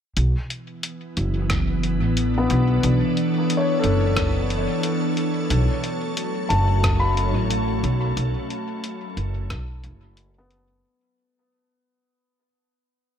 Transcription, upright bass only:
0.17 B1
1.17 F#1
2.01 A1
2.50 B1
2.84 B1
3.84 F#1
5.50 B1
6.50 F#1
7.35 A1
7.83 B1
8.17 B1
9.17 F#1
9.51 B1
9.84 F#1

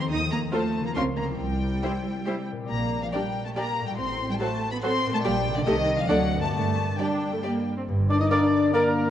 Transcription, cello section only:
0.00 C4
0.10 D#4
0.31 A#3
0.53 A3
0.85 A#3
0.96 C4
1.17 A#3
1.39 G3
2.70 A#3
3.03 F3
3.14 G3
3.45 A3
3.56 A#3
3.87 G3
3.98 C4
4.30 G3
4.40 A3
4.72 B3
4.82 C4
5.14 A3
5.24 G3
5.56 D3
5.66 D#3
5.98 F3
6.09 F#3
6.43 A3
6.54 A3
6.99 G3
7.88 G2

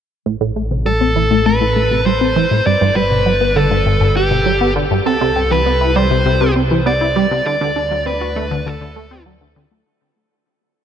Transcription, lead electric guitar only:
0.86 A4
1.46 B4
2.06 C5
2.67 D5
2.96 B4
3.56 A4
4.17 G4
5.06 A4
5.51 B4
5.97 C5
6.87 D5
7.47 D5
8.07 B4
8.67 A4

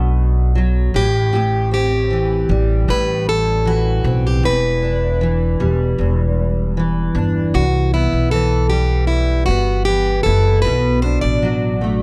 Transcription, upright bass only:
Already playing: B1
0.94 A1
2.49 A1
2.88 A1
4.04 B1
4.43 E1
5.60 E1
5.98 E1
7.15 G1
7.54 C2
8.12 B1
9.48 G1
10.26 F#1
10.65 B1
11.23 A1

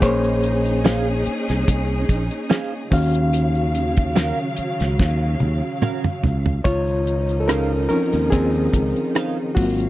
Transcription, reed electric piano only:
0.00 A#3 G#4 C5 C#5
2.91 D#3 C#4 F#4 F5
6.64 F4 C#5
7.40 A4
7.48 C#4 A#4
7.89 F3 C4 C#4 D#4 A#4
8.30 C4 G#4
9.55 F#3 A#3 C4 F4 F#4

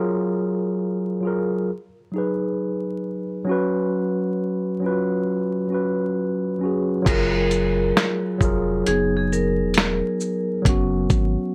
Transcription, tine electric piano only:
Already playing: F#3 F4 G#4 A#4
1.20 F#3 F4
1.25 G#4 A#4
2.12 F#3 D#4
2.16 G#4 B4
3.45 F#3 C#4
3.49 F#4 B4
4.80 F#3 C#4
4.84 F4 B4
4.91 F#4
5.68 F#3 C#4
5.72 F#4 B4
6.59 F#3 C#4
6.63 F#4 G#4
7.02 F#3 F4
7.07 G#4 A#4
8.38 F#3 F4
8.42 G#4 A#4
8.84 F#3 D#4
8.88 B3 G#4
10.62 F#3 B3
10.67 C#4 F#4

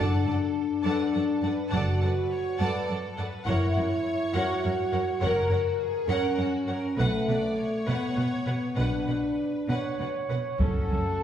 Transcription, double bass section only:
0.00 F#1
1.72 F#1
3.47 F#1
5.22 F#1
6.97 B1
8.77 B1
10.60 F#1
10.90 F#1

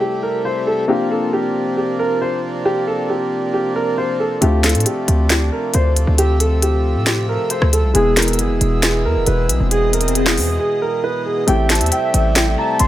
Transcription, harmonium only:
Already playing: C3 G3 A3 E4
0.89 F3 A#3 D4
4.42 A3
6.18 E5
7.95 B2 E3 G#3
9.71 D#5
11.48 C3 G3 A3 E4

